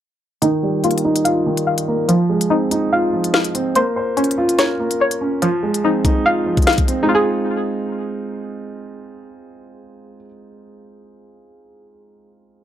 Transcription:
0.42 grand piano D#3, synth pluck D#4, closed hi-hat
0.63 grand piano G3
0.84 grand piano A#3, synth pluck F4, closed hi-hat
0.91 closed hi-hat
0.98 closed hi-hat
1.05 grand piano D#4
1.16 closed hi-hat
1.25 grand piano F4, synth pluck F5, closed hi-hat
1.46 grand piano D#3
1.57 closed hi-hat
1.67 synth pluck F5
1.78 closed hi-hat
1.88 grand piano A#3
2.08 synth pluck F3, grand piano F3, closed hi-hat
2.30 grand piano G#3
2.41 closed hi-hat
2.50 grand piano C4, synth pluck D#4
2.71 grand piano D#4, closed hi-hat
2.92 grand piano F4, synth pluck F5
3.13 grand piano F3
3.24 closed hi-hat
3.34 synth pluck F5, snare
3.44 closed hi-hat
3.55 grand piano C4, closed hi-hat
3.75 grand piano A#3, synth pluck C5, closed hi-hat
3.96 grand piano C5
4.17 synth pluck C#4, grand piano C#4, closed hi-hat
4.24 closed hi-hat
4.31 closed hi-hat
4.38 grand piano F4
4.49 closed hi-hat
4.59 grand piano A#4, synth pluck C#5, snare, closed hi-hat
4.80 grand piano A#3
4.91 closed hi-hat
5.01 synth pluck C#5
5.11 closed hi-hat
5.21 grand piano C#4
5.42 grand piano F3, synth pluck F3, closed hi-hat
5.63 grand piano G#3
5.74 closed hi-hat
5.84 grand piano C4, synth pluck D#4
6.05 grand piano D#4, kick, closed hi-hat
6.25 grand piano F4, synth pluck F5
6.46 grand piano F3
6.57 kick, closed hi-hat
6.62 closed hi-hat
6.67 synth pluck F5, snare, closed hi-hat
6.73 closed hi-hat
6.78 kick, closed hi-hat
6.88 grand piano C4, closed hi-hat
7.03 grand piano G#3, synth pluck D#4
7.07 grand piano C4, synth pluck F4
7.11 grand piano D#4 F4, synth pluck G#4

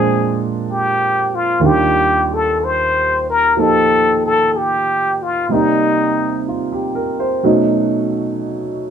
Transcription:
Already playing: grand piano A#2 F3 G#3 C4 D4, muted trumpet G#4
0.69 muted trumpet G4
1.35 muted trumpet F4
1.59 grand piano D#2 D#3 G3 D4
1.65 grand piano F4, muted trumpet G4
2.34 muted trumpet A4
2.64 muted trumpet C5
3.30 muted trumpet A#4
3.56 grand piano F3 A#3 D#4 G4, muted trumpet A4
4.26 muted trumpet A4
4.56 muted trumpet G4
5.23 muted trumpet F4
5.49 grand piano C3 G3 A#3 D5, muted trumpet D#4
5.54 grand piano D#4
6.48 grand piano F4
6.72 grand piano G4
6.95 grand piano A#4
7.20 grand piano C5
7.43 grand piano B2 F#3 A3 C#4 D#4

